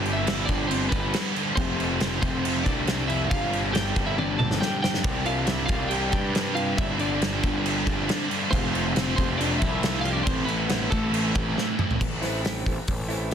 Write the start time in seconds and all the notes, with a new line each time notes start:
Already playing: G1 G2 D3 G4 G5
0.02 G3 C4 D4, crash
0.13 E5
0.18 E4
0.24 D3 G3 C4 D4, crash
0.28 snare
0.46 G1 G3 C4 D4 D5, kick, crash
0.50 G2 D3 D4
0.67 D3 G3 C4 C5, crash
0.71 C4 D4
0.89 B3 C4 D4 B4, kick, crash
0.93 G1 G3
1.13 G2 D3 G3 C4 D4, snare, crash
1.34 G3 C4 D4, crash
1.55 F1 F2 C3 F3 A3 C4 C5, kick, crash
1.76 F3 A3 C4, crash
1.99 C3 F3 A3 C4, snare, crash
2.20 F1 F2 C3 F3 A3 C4 C5, kick, crash
2.42 C3 F3 A3 C4, crash
2.64 C2 F3 A3 C4 D4 D5, kick, crash
2.85 F2 C3 F3 A3 C4, snare, crash
3.07 F3 A3 C4 E4 E5, crash
3.28 G2 D3 G3 C4 D4 F4 F5, kick, crash
3.32 G1
3.50 G3 C4 D4, crash
3.71 D3 G3 C4 D4 G4 G5, crash
3.76 snare
3.93 G1 G2 D3 G3 C4 D4, kick, crash
4.06 E4 E5
4.15 D3 G3 C4 D4 D5, high tom
4.37 G1 G3 C4 D4 A4 A5, mid tom
4.51 snare
4.59 G2 D3 G3 C4 D4 G4 G5, snare
4.81 G3 C4 D4 G4 G5, snare
4.94 snare
5.02 C2 C3 G3 C4 D4, kick, crash
5.24 G3 C4 D4 F4 F5, crash
5.46 C3 G3 C4 D4 E4 E5, snare, crash
5.66 C2 C4 D4 F4 F5, kick, crash
5.70 C3 G3
5.89 C3 G3 C4 D4 G4 G5, crash
6.10 G2 G3 C4 D4 G4 G5, kick, crash
6.32 C3 G3 C4 D4, snare, crash
6.55 G3 C4 D4 F4 F5, crash
6.77 G1 G2 D3 G3 C4 D4 E4 E5, kick, crash
6.98 G3 C4 D4 D5, crash
7.20 D3 G3 C4 D4, snare, crash
7.41 G1 G2 D3 G3 C4 D4, kick, crash
7.63 D3 G3 C4 D4, crash
7.85 G1 G3 C4 D4, kick, crash
8.06 G2 D3 G3 C4 D4, crash
8.10 snare
8.28 G3 C4 D4, crash
8.50 F1 F3 A3 C4 F4 C5, kick, crash
8.72 A3 C4 F4, crash
8.94 F3 A3 C4 F4, snare, crash
9.15 F1 F3 A3 C4 F4 C5, kick, crash
9.37 F3 A3 C4 D4 F4 D5, crash
9.59 C2 A3 C4 E4 F4 E5, kick, crash
9.80 F3 A3 C4 F4, snare, crash
10.01 C4 F4 F5
10.05 A3, crash
10.13 D4 D5
10.23 A2 E3 A3 C4 C5, kick, crash
10.27 A1 E4
10.45 B3 C4 E4 B4, crash
10.50 A3
10.67 E3 A3 C4 E4, snare, crash
10.90 A1 A2 E3 A3 C4 E4 A4, kick, crash
11.10 E3 A3 C4 E4, crash
11.33 A1 A3 C4 E4, kick, crash
11.55 A2 E3 A3 C4 E4, snare
11.78 A3 C4 E4, mid tom
11.91 floor tom
12.01 A1, kick, crash
12.21 E3 A3 C4 E4, snare, open hi-hat
12.43 E3 A3 C4 E4, snare, open hi-hat
12.66 A1, kick, open hi-hat
12.88 A1, kick, open hi-hat
13.08 E3 A3 C4 E4, open hi-hat
13.31 E3